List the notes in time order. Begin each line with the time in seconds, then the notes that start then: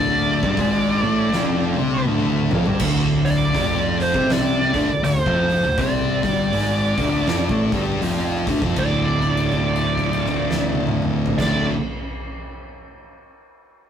Already playing: D1 D2 D3 D4 D5 F5 A5
0.43 G1 G2 G3, kick
0.57 G#1 G#2 G#3, kick, open hi-hat
1.03 A1 A2 A3
1.31 F1 F2 F3, snare
1.76 C2 C3 C4, high tom
1.91 high tom
2.06 D1 D2 D3, mid tom
2.51 F1 F2 F3, floor tom
2.65 G1 G2 G3, floor tom
2.80 D1 D2 D3, kick, crash
3.25 D5, open hi-hat
3.54 F1 F2 F3, kick, open hi-hat
4.00 C5, open hi-hat
4.13 C2 C3 C4, kick
4.30 D5, snare, open hi-hat
4.74 D1 D2 D3, kick, open hi-hat
4.89 D1 D2
5.03 D1 D2 C5, open hi-hat
5.26 F1 F2 F3, kick
5.50 open hi-hat
5.63 D1 D2
5.78 C2 C3 C4 D5, kick, open hi-hat
6.23 G1 G2 G3, kick, open hi-hat
6.52 G#1 G#2 G#3, open hi-hat
6.98 D1 D2 D3, kick, open hi-hat
7.27 F1 F2 F3, snare, open hi-hat
7.49 A1 A2 A3, kick
7.72 G1 G2 G3, kick, open hi-hat
8.01 F1 F2 F3, open hi-hat
8.47 D1 D2 D3, kick, open hi-hat
8.62 F1 F2 F3, kick
8.76 D1 D2 A2 D5, kick, crash
8.80 D3
9.22 kick, crash
9.37 crash
9.52 kick, crash
9.76 crash
9.98 kick, crash
10.13 crash
10.27 kick, crash
10.51 snare
10.73 high tom
10.87 mid tom
11.02 mid tom
11.26 floor tom
11.38 D1 D2 A2 D3 D5, kick, snare, crash